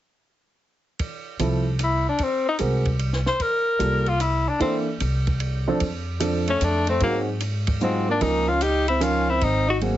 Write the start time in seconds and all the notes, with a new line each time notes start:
0.99 kick, ride
1.39 C2 F3 C4 E4 A4, hi-hat pedal, ride
1.79 hi-hat pedal, ride
1.84 E4
2.09 D4
2.18 kick, ride
2.23 C4
2.49 D#4
2.59 C2 G#3 C4 F#4 A#4, hi-hat pedal, ride
2.85 kick, ride
2.99 ride
3.13 snare
3.26 C5, snare
3.40 A#4, kick, ride
3.79 C2 G3 A#3 F4 A4, hi-hat pedal, ride
4.06 F4, ride
4.20 E4, hi-hat pedal, ride
4.49 D4
4.60 E3 A#3 C4 D4 A4, kick, ride
5.00 C2, hi-hat pedal, ride
5.27 kick, ride
5.40 ride
5.68 F3 C4 D4 A4
5.80 F2, kick, ride
6.20 F3 C4 D4 A4, hi-hat pedal, ride
6.48 A3 C#4, ride
6.61 F2 A3 D4, hi-hat pedal, ride
6.87 A3 C4, ride
7.00 G#2 F#3 A#3 C4 D#4 G#4, kick, ride
7.40 hi-hat pedal, ride
7.67 kick, ride
7.81 F#3 G#3 C4 D#4 F4, hi-hat pedal
8.09 A#3 D4
8.21 C#2 F3 A#3 C#4 D#4 A#4, kick, ride
8.48 C#4 F4
8.61 D#4 G4, hi-hat pedal, ride
8.88 C4 E4, ride
9.00 F3 C#4 D#4 F4 A#4, hi-hat pedal, ride
9.29 C4 E4
9.41 G#1 C4 D#4, kick, ride
9.68 D#4 F#4
9.81 F#3 A#3 C4 G#4, ride